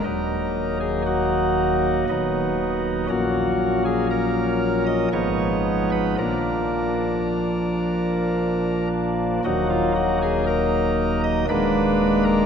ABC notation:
X:1
M:3/4
L:1/16
Q:1/4=58
K:Ebm
V:1 name="Pipe organ"
B3 A G8 | G3 A B3 e d3 c | B8- B2 z2 | G F G A B3 e c3 B |]
V:2 name="Pipe organ" clef=bass
[E,,,E,,G,B,E]8 [^D,,,^D,,^F,=B,^D]4 | [B,,,B,,G,B,D]8 [A,,,A,,F,CE]4 | [B,,,B,,F,B,=D]12 | [E,,,E,,G,B,E]8 [E,,,E,,A,B,=D]4 |]